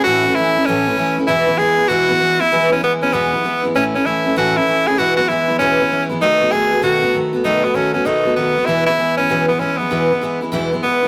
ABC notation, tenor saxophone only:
X:1
M:4/4
L:1/8
Q:"Swing" 1/4=195
K:E
V:1 name="Tenor saxophone"
F2 E2 C3 z | E2 G2 F3 E- | E C B, C B,3 z | C C E2 F E2 G |
F F E2 C3 z | D2 G2 F2 z2 | D B, C C D2 B,2 | E E2 C2 B, C B,- |
B,3 z3 B,2 |]